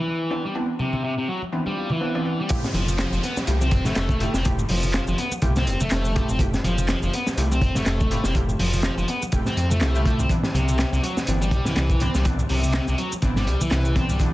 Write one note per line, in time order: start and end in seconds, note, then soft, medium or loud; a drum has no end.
0.00 0.43 E3 loud
0.30 0.44 E3 medium
0.30 0.44 B3 medium
0.30 0.44 C4 medium
0.30 0.44 D4 medium
0.45 0.54 G3 medium
0.55 0.69 E3 medium
0.55 0.69 B3 medium
0.55 0.69 C4 medium
0.55 0.69 D4 medium
0.79 1.02 C3 loud
0.79 high conga medium
0.93 low conga medium
1.04 1.13 C3 medium
1.18 1.28 C3 medium
1.28 1.41 F#3 loud
1.42 high conga medium
1.52 1.73 E3 medium
1.52 1.73 B3 medium
1.52 1.73 C4 medium
1.52 1.73 D4 medium
1.52 swell medium
1.66 1.89 G3 loud
1.66 high conga medium
1.90 2.38 E3 loud
1.90 high conga medium
1.90 low conga medium
2.01 2.13 E3 medium
2.01 2.13 B3 medium
2.01 2.13 C4 medium
2.01 2.13 D4 medium
2.15 2.24 E3 loud
2.15 2.24 B3 medium
2.15 2.24 C4 medium
2.15 2.24 D4 loud
2.25 2.46 E3 medium
2.25 2.46 B3 medium
2.25 2.46 C4 medium
2.25 2.46 D4 medium
2.40 2.49 G3 medium
2.49 2.64 A3 medium
2.49 2.64 E4 medium
2.49 2.64 F4 medium
2.49 2.64 G4 medium
2.49 kick loud
2.49 closed hi-hat medium
2.49 downlifter medium
2.49 shaker medium
2.64 snare medium
2.64 shaker soft
2.73 3.04 F1 loud
2.73 2.98 F3 loud
2.73 closed hi-hat medium
2.73 high conga medium
2.88 low conga medium
2.88 shaker medium
2.98 3.08 F3 medium
2.98 snare loud
2.98 clap loud
2.98 closed hi-hat medium
2.98 shaker medium
3.12 3.19 F1 loud
3.12 3.22 F3 medium
3.12 shaker soft
3.23 3.36 B3 loud
3.23 closed hi-hat medium
3.37 snare soft
3.37 high conga medium
3.37 shaker medium
3.47 3.73 C2 loud
3.47 3.68 A3 medium
3.47 3.68 E4 medium
3.47 3.68 F4 medium
3.47 3.68 G4 medium
3.47 closed hi-hat medium
3.47 shaker medium
3.61 3.84 C4 loud
3.61 high conga medium
3.61 shaker soft
3.71 3.81 F1 medium
3.71 kick loud
3.71 closed hi-hat medium
3.85 3.94 F1 soft
3.85 4.33 A3 loud
3.85 snare soft
3.85 high conga medium
3.85 low conga medium
3.85 shaker medium
3.95 4.26 F1 medium
3.95 snare loud
3.95 clap loud
3.95 closed hi-hat medium
3.95 shaker medium
4.09 kick loud
4.09 shaker soft
4.20 4.34 A3 medium
4.20 4.35 E4 medium
4.20 4.35 F4 medium
4.20 4.35 G4 medium
4.20 closed hi-hat medium
4.34 4.63 F1 loud
4.34 4.45 C4 medium
4.34 snare soft
4.34 shaker medium
4.45 4.59 A3 medium
4.45 4.59 E4 medium
4.45 4.59 F4 medium
4.45 4.59 G4 medium
4.45 kick loud
4.45 closed hi-hat medium
4.45 shaker medium
4.59 shaker soft
4.69 4.99 F1 loud
4.69 4.93 F3 loud
4.69 open hi-hat medium
4.69 high conga medium
4.83 low conga medium
4.83 shaker medium
4.93 5.04 F3 medium
4.93 snare loud
4.93 clap loud
4.93 closed hi-hat medium
4.93 shaker medium
5.07 5.14 F1 loud
5.07 5.18 F3 medium
5.07 shaker soft
5.18 5.31 B3 loud
5.18 closed hi-hat medium
5.31 high conga medium
5.31 shaker medium
5.42 5.68 C2 loud
5.42 5.63 A3 medium
5.42 5.63 E4 medium
5.42 5.63 F4 medium
5.42 5.63 G4 medium
5.42 kick loud
5.42 closed hi-hat medium
5.42 shaker medium
5.56 5.79 C4 loud
5.56 snare soft
5.56 high conga medium
5.56 shaker soft
5.67 5.76 F1 medium
5.67 closed hi-hat medium
5.80 5.89 F1 soft
5.80 6.28 A3 loud
5.80 high conga medium
5.80 low conga medium
5.80 shaker medium
5.91 6.22 F1 medium
5.91 snare loud
5.91 clap loud
5.91 closed hi-hat medium
5.91 shaker medium
6.05 shaker soft
6.16 6.30 A3 medium
6.16 6.30 E4 medium
6.16 6.30 F4 medium
6.16 6.30 G4 medium
6.16 kick loud
6.16 closed hi-hat medium
6.29 6.58 F1 loud
6.29 6.40 C4 medium
6.29 shaker medium
6.39 6.54 A3 medium
6.39 6.54 E4 medium
6.39 6.54 F4 medium
6.39 6.54 G4 loud
6.39 kick loud
6.39 closed hi-hat loud
6.39 shaker medium
6.54 snare medium
6.54 shaker soft
6.64 6.95 F1 loud
6.64 6.88 F3 loud
6.64 closed hi-hat medium
6.64 high conga medium
6.78 low conga medium
6.78 shaker medium
6.88 6.99 F3 medium
6.88 snare loud
6.88 clap loud
6.88 closed hi-hat medium
6.88 shaker medium
7.03 7.09 F1 loud
7.03 7.13 F3 medium
7.03 shaker soft
7.13 7.27 B3 loud
7.13 closed hi-hat medium
7.27 snare soft
7.27 high conga medium
7.27 shaker medium
7.37 7.63 C2 loud
7.37 7.58 A3 medium
7.37 7.58 E4 medium
7.37 7.58 F4 medium
7.37 7.58 G4 medium
7.37 closed hi-hat medium
7.37 shaker medium
7.51 7.75 C4 loud
7.51 high conga medium
7.51 shaker soft
7.61 7.70 F1 medium
7.61 kick medium
7.61 closed hi-hat medium
7.75 7.84 F1 soft
7.75 8.23 A3 loud
7.75 snare soft
7.75 high conga medium
7.75 low conga medium
7.75 shaker medium
7.86 8.16 F1 medium
7.86 snare loud
7.86 clap loud
7.86 closed hi-hat medium
7.86 shaker medium
8.00 kick loud
8.00 shaker soft
8.11 8.25 A3 medium
8.11 8.25 E4 medium
8.11 8.25 F4 medium
8.11 8.25 G4 medium
8.11 closed hi-hat medium
8.24 8.53 F1 loud
8.24 8.35 C4 medium
8.24 snare soft
8.24 shaker medium
8.35 8.49 A3 medium
8.35 8.49 E4 medium
8.35 8.49 F4 medium
8.35 8.49 G4 medium
8.35 kick loud
8.35 closed hi-hat medium
8.35 shaker medium
8.49 shaker soft
8.59 8.90 F1 loud
8.59 8.83 F3 loud
8.59 open hi-hat medium
8.59 high conga medium
8.73 low conga medium
8.73 shaker medium
8.83 8.94 F3 medium
8.83 snare loud
8.83 clap loud
8.83 closed hi-hat medium
8.83 shaker medium
8.98 9.04 F1 loud
8.98 9.08 F3 medium
8.98 shaker soft
9.08 9.21 B3 loud
9.08 closed hi-hat medium
9.22 high conga medium
9.22 shaker medium
9.32 9.41 F1 loud
9.32 9.53 A3 medium
9.32 9.53 E4 medium
9.32 9.53 F4 medium
9.32 9.53 G4 medium
9.32 kick loud
9.32 closed hi-hat medium
9.32 shaker medium
9.46 9.70 C4 loud
9.46 snare soft
9.46 high conga medium
9.46 shaker soft
9.57 9.82 F2 medium
9.57 closed hi-hat medium
9.71 10.18 A3 loud
9.71 high conga medium
9.71 low conga medium
9.71 shaker medium
9.81 10.11 C2 loud
9.81 9.93 A3 medium
9.81 9.93 E4 medium
9.81 9.93 F4 medium
9.81 9.93 G4 medium
9.81 snare loud
9.81 clap loud
9.81 closed hi-hat medium
9.81 shaker medium
9.95 10.04 A3 loud
9.95 10.04 E4 medium
9.95 10.04 F4 medium
9.95 10.04 G4 loud
9.95 shaker soft
10.05 10.26 A3 medium
10.05 10.26 E4 medium
10.05 10.26 F4 medium
10.05 10.26 G4 medium
10.05 kick loud
10.05 closed hi-hat medium
10.19 10.26 C2 loud
10.19 10.30 C4 medium
10.19 shaker medium
10.29 10.44 E3 medium
10.29 10.44 B3 medium
10.29 10.44 C4 medium
10.29 10.44 D4 loud
10.29 kick loud
10.29 closed hi-hat loud
10.29 shaker medium
10.43 snare medium
10.43 shaker soft
10.54 10.85 C2 loud
10.54 10.78 C3 loud
10.54 closed hi-hat medium
10.54 high conga medium
10.69 low conga medium
10.69 shaker medium
10.79 10.89 C3 medium
10.79 snare loud
10.79 clap loud
10.79 closed hi-hat medium
10.79 shaker soft
10.93 10.99 C2 loud
10.93 11.03 C3 medium
10.93 shaker soft
11.03 11.16 F#3 loud
11.03 closed hi-hat medium
11.17 snare medium
11.17 high conga medium
11.17 shaker medium
11.27 11.53 G1 loud
11.27 11.48 E3 medium
11.27 11.48 B3 medium
11.27 11.48 C4 medium
11.27 11.48 D4 medium
11.27 closed hi-hat medium
11.27 shaker soft
11.41 11.64 G3 loud
11.41 high conga medium
11.41 shaker soft
11.51 11.61 C2 medium
11.51 kick medium
11.51 closed hi-hat medium
11.65 11.74 C2 soft
11.65 12.00 E3 loud
11.65 snare soft
11.65 high conga medium
11.65 low conga medium
11.65 shaker medium
11.76 12.07 C2 medium
11.76 snare loud
11.76 clap loud
11.76 closed hi-hat medium
11.76 shaker medium
11.90 kick loud
11.90 shaker soft
12.00 12.15 E3 medium
12.00 12.15 B3 medium
12.00 12.13 C4 medium
12.00 12.15 C4 medium
12.00 12.15 D4 medium
12.00 closed hi-hat medium
12.15 12.44 C2 loud
12.15 12.25 G3 medium
12.15 snare soft
12.15 shaker medium
12.25 12.39 E3 medium
12.25 12.39 B3 medium
12.25 12.39 C4 medium
12.25 12.39 D4 medium
12.25 kick loud
12.25 closed hi-hat medium
12.25 shaker medium
12.39 shaker soft
12.49 12.80 C2 loud
12.49 12.73 C3 loud
12.49 open hi-hat medium
12.49 high conga medium
12.63 low conga medium
12.63 shaker medium
12.73 12.84 C3 medium
12.73 snare loud
12.73 clap loud
12.73 closed hi-hat medium
12.73 shaker soft
12.88 12.95 C2 loud
12.88 12.98 C3 medium
12.88 shaker soft
12.98 13.12 F#3 loud
12.98 closed hi-hat medium
13.12 high conga medium
13.12 shaker medium
13.22 13.49 G1 loud
13.22 13.43 E3 medium
13.22 13.43 B3 medium
13.22 13.43 C4 medium
13.22 13.44 D4 medium
13.22 kick loud
13.22 closed hi-hat medium
13.22 shaker medium
13.36 13.60 G3 loud
13.36 snare soft
13.36 high conga medium
13.36 shaker soft
13.47 13.56 C2 medium
13.47 closed hi-hat medium
13.61 13.70 C2 soft
13.61 13.95 E3 loud
13.61 high conga medium
13.61 low conga medium
13.61 shaker medium
13.71 14.02 C2 medium
13.71 snare loud
13.71 clap loud
13.71 closed hi-hat medium
13.71 shaker soft
13.85 shaker soft
13.96 14.10 E3 medium
13.96 14.10 B3 medium
13.96 14.10 C4 medium
13.96 14.09 C4 medium
13.96 14.10 D4 medium
13.96 kick medium
13.96 closed hi-hat medium
14.09 14.34 C2 loud
14.09 14.20 G3 medium
14.09 shaker medium
14.20 14.34 E3 medium
14.20 14.34 B3 medium
14.20 14.34 C4 medium
14.20 14.34 D4 medium
14.20 kick loud
14.20 closed hi-hat medium
14.20 shaker medium